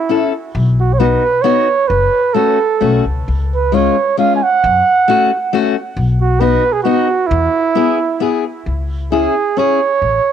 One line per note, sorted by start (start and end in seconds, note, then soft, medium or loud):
0.00 0.31 E4 medium
0.09 0.31 C#4 medium
0.09 0.32 E4 medium
0.09 0.32 A4 medium
0.55 1.14 B1 medium
0.80 0.95 F#4 medium
0.94 1.01 C#5 medium
1.00 1.22 B3 medium
1.00 1.22 D#4 medium
1.00 1.22 F#4 medium
1.00 1.44 B4 medium
1.42 1.67 B3 medium
1.42 1.67 D#4 medium
1.42 1.67 F#4 medium
1.42 1.90 C#5 medium
1.88 2.06 F#1 medium
1.88 2.36 B4 medium
2.34 2.57 A3 medium
2.34 2.58 C#4 medium
2.34 2.58 F#4 medium
2.34 3.05 A4 medium
2.81 3.04 B1 medium
2.81 3.03 A3 medium
2.81 3.04 C#4 medium
2.81 3.04 F#4 medium
3.06 3.25 C#2 medium
3.28 3.87 C#2 medium
3.55 3.76 B4 medium
3.72 3.94 G#3 medium
3.72 3.95 C#4 medium
3.72 3.95 F4 medium
3.72 4.18 C#5 medium
4.17 4.39 G#3 medium
4.17 4.40 C#4 medium
4.17 4.40 F4 medium
4.17 4.34 F5 medium
4.36 4.45 G#5 medium
4.43 5.77 F#5 loud
4.64 4.79 F#2 medium
5.08 5.29 A3 medium
5.08 5.30 C#4 medium
5.08 5.30 F#4 medium
5.53 5.74 A3 medium
5.53 5.75 C#4 medium
5.53 5.75 F#4 medium
5.96 6.54 B1 medium
6.21 6.42 F#4 medium
6.40 6.62 B3 medium
6.40 6.63 D#4 medium
6.40 6.63 F#4 medium
6.40 6.74 B4 loud
6.73 6.83 G#4 medium
6.83 7.07 B3 medium
6.83 7.07 D#4 medium
6.83 7.28 F#4 medium
6.83 7.07 F#4 medium
7.27 8.44 E4 medium
7.31 7.46 E2 loud
7.75 7.97 B3 medium
7.75 7.97 E4 medium
7.75 7.98 G#4 medium
8.20 8.43 B3 medium
8.20 8.43 E4 medium
8.20 8.44 G#4 medium
8.66 9.25 C#2 medium
9.12 9.34 C#4 soft
9.12 9.34 E4 medium
9.12 9.60 G#4 medium
9.12 9.34 G#4 medium
9.57 9.78 C#4 medium
9.57 9.79 E4 medium
9.57 9.79 G#4 medium
9.57 10.32 C#5 medium
10.02 10.17 A1 medium